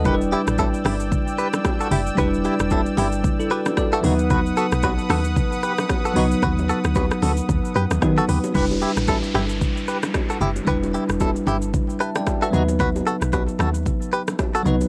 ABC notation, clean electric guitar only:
X:1
M:4/4
L:1/16
Q:"Swing 16ths" 1/4=113
K:Em
V:1 name="Clean electric guitar"
[GB] z [EG] z [EA] z [EG] z3 [GB] z2 [FA] [EG] z | [GB] z [EG] z [EA] z [EG] z3 [GB] z2 [FA] [^DF] z | [FB] z [FA] z [FB] z [FA] z3 [GB] z2 [FA] [^DF] z | [FB] z [FA] z [FB] z [FA] z3 [GB] z2 [FA] [GB] z |
[GB] z [EG] z [EA] z [EG] z3 [GB] z2 [FA] [EG] z | [GB] z [EG] z [EA] z [EG] z3 [GB] z2 [FA] [^DF] z | [FB] z [FA] z [FB] z [FA] z3 [GB] z2 [FA] [^DF] z |]